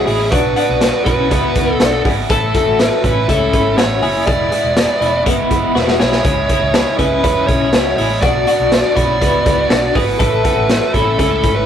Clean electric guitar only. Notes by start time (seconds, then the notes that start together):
0.07 E4 G#4
0.32 D4 F#4
0.56 D4 F#4
1.06 C#4 E4
1.31 B3 E4
1.81 D4 F#4
2.05 E4 G#4
2.30 E4 A4
2.55 F#4 A4
3.04 C#4 E4
3.29 C#4 E4
3.78 C#4 F#4
4.02 E4 G#4
4.27 E4 G#4
4.52 E4 G#4
5.01 C#4 E4
5.26 B3 E4
5.75 B3 F#4
6.00 E4 G#4
6.25 E4 G#4
6.50 E4 G#4
6.99 C#4 E4
7.23 C#4 E4
7.73 C#4 F#4
7.98 E4 G#4
8.23 D4 F#4
8.47 D4 F#4
8.96 C#4 E4
9.21 B3 E4
9.71 D4 F#4
9.96 E4 G#4
10.19 E4 A4
10.44 F#4 A4
10.94 C#4 E4
11.19 C#4 E4